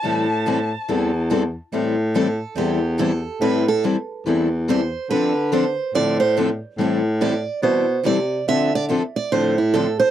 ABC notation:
X:1
M:4/4
L:1/8
Q:"Swing" 1/4=142
K:Am
V:1 name="Violin"
a6 z2 | z8 | z8 | z8 |
z8 | z8 |]
V:2 name="Steel-string acoustic guitar"
c6 z2 | z2 A2 G2 A2 | B A z4 c2 | B2 c2 d c z2 |
z2 d2 c2 d2 | e d z d c E A c |]
V:3 name="Steel-string acoustic guitar"
[E,G,CEA] z [E,G,CEA] z [E,G,CEA] z [E,G,CEA] z | [E,G,CEA] z [E,G,CEA] z [E,G,CEA] z [E,G,CEA] z | [E,G,CEA] z [E,G,CEA] z [E,G,CEA] z [E,G,CEA] z | [D,F,CDA] z [D,F,CDA] z [D,F,CDA] z [D,F,CDA] z |
[E,G,CEA] z [E,G,CEA] z [E,G,CEA] z [E,G,CEA] z | [D,F,CDA] z [D,F,CDA] z [D,F,CDA] z [D,F,CDA] z |]
V:4 name="Steel-string acoustic guitar"
[E,G,CEA] z [E,G,CEA] z [E,G,CEA] z [E,G,CEA] z | [E,G,CEA] z [E,G,CEA] z [E,G,CEA] z [E,G,CEA] z | [E,G,CEA] z [E,G,CEA] z [E,G,CEA] z [E,G,CEA] z | [D,F,CDA] z [D,F,CDA] z [D,F,CDA] z [D,F,CDA] z |
[E,G,CEA] z [E,G,CEA] z [E,G,CEA] z [E,G,CEA] z | [D,F,CDA] z [D,F,CDA] z [D,F,CDA] z [D,F,CDA] z |]
V:5 name="Baritone saxophone" clef=bass
A,,4 E,,4 | A,,4 E,,4 | A,,3 z E,,4 | D,4 A,,4 |
A,,4 B,,2 C,2 | D,3 z A,,4 |]